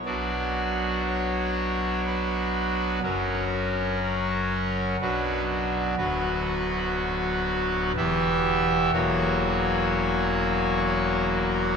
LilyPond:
<<
  \new Staff \with { instrumentName = "Pipe organ" } { \time 3/4 \key b \minor \tempo 4 = 61 d''4 cis''4 b'4 | ais'4 ais'4 b'8 r8 | b'2 e''4 | cis''2 cis''8 ais'8 | }
  \new Staff \with { instrumentName = "Pipe organ" } { \clef bass \time 3/4 \key b \minor <b,, b, fis d' fis'>2. | <fis,, fis, fis cis' fis'>2 <b,, b, fis d' fis'>4 | <d,, d, fis b fis'>2 <e,, e, e b g'>4 | <e,, e, fis ais fis'>2. | }
>>